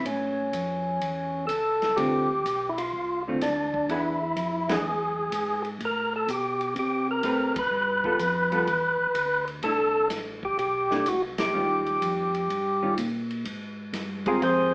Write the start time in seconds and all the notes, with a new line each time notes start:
0.06 A2 C#4, kick, ride
0.53 F2, kick, hi-hat pedal, ride
1.01 E2, kick, ride
1.47 C#2 A4, kick, hi-hat pedal, ride
1.82 snare, ride
1.96 D2 D3 A3 C4 F4 G4, kick, ride
2.46 B1, kick, hi-hat pedal, ride
2.69 E4
2.78 F4, ride
2.93 C2, kick
3.28 D3 A3 C4 F4
3.41 D2 D4, kick, snare, hi-hat pedal, ride
3.74 kick
3.89 E2 E3 B3 D4 E4 G#4, kick, ride
4.36 F2, kick, hi-hat pedal, ride
4.68 E3 B3 D4 G#4, snare, ride
4.84 E2
5.32 G#2, kick, hi-hat pedal, ride
5.65 ride
5.80 A2, kick, ride
5.85 A#4
6.16 A4
6.28 B2 G4, kick, hi-hat pedal, ride
6.61 ride
6.76 C3 G4, kick, ride
7.11 A#4
7.23 A2 A3 C4 G4 B4, kick, hi-hat pedal, ride
7.56 A2 B4, kick, ride
7.71 G2
8.04 G3 B3 F4 A4, kick
8.19 F2, kick, hi-hat pedal, ride
8.52 G3 B3 F4 A4, ride
8.67 E2, kick, ride
8.99 E2
9.14 D2, kick, hi-hat pedal, ride
9.48 ride
9.63 C2 A3 D4 E4 A4, kick, ride
10.10 A1, kick, snare, hi-hat pedal, ride
10.43 G4, kick
10.58 B1 G4, kick, ride
10.91 A3 D4 E4, snare
11.06 C2 F#4, kick, hi-hat pedal, ride
11.38 G4, snare, ride
11.53 D#2 D#3 G3 C#4 F4
11.86 ride
12.02 F2, kick, hi-hat pedal, ride
12.34 ride
12.50 G2, kick, ride
12.82 D#3 G3 C#4 F4
12.98 A#2, kick, hi-hat pedal, ride
13.31 ride
13.45 G#2, kick, ride
13.93 G2, kick, snare, hi-hat pedal, ride
14.26 G#3 C4 F4 G4 G#4 A#4, kick, ride
14.42 F2 G#4 C5, kick, ride